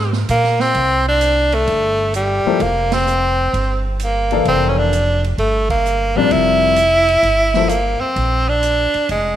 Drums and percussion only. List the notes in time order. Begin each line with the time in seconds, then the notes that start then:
0.13 snare
0.29 hi-hat pedal, ride
0.44 snare
0.60 snare
0.75 ride
1.21 hi-hat pedal, ride
1.52 ride
1.67 ride
2.14 hi-hat pedal, ride
2.60 ride
2.92 snare, ride
3.07 hi-hat pedal
3.54 ride
3.99 hi-hat pedal, ride
4.31 ride
4.45 ride
4.93 hi-hat pedal, ride
5.24 ride
5.38 ride
5.70 kick, ride
5.85 hi-hat pedal
6.31 ride
6.76 hi-hat pedal, ride
7.08 ride
7.23 ride
7.54 snare
7.69 hi-hat pedal, ride
8.16 ride
8.63 hi-hat pedal, ride
8.94 ride
9.09 ride